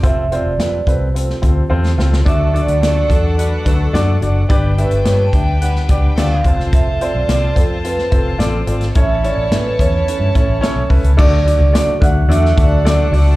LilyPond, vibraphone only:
\new Staff \with { instrumentName = "Vibraphone" } { \time 4/4 \key d \major \tempo 4 = 108 e''8 d''4 c''4. r4 | e''8 d''16 d''8. a'2 r8 | r8 b'8.~ b'32 a''32 g''8 fis''4 f''8. r16 | e''8 d''4 a'8 b'8 a'4 r8 |
e''8 d''8 b'8 cis''2 r8 | d''4. fis''8 e''8 d''4 r8 | }